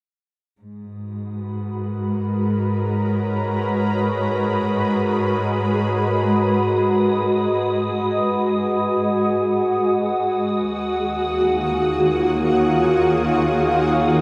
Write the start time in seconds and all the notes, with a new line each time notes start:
0.59 G#2 G#3 D#6
0.76 F#4 B4
1.34 A#4
2.28 C#5
5.82 G#4
6.12 D#5
10.67 D#2 D#3
10.78 A#3
10.91 F4
11.33 C#5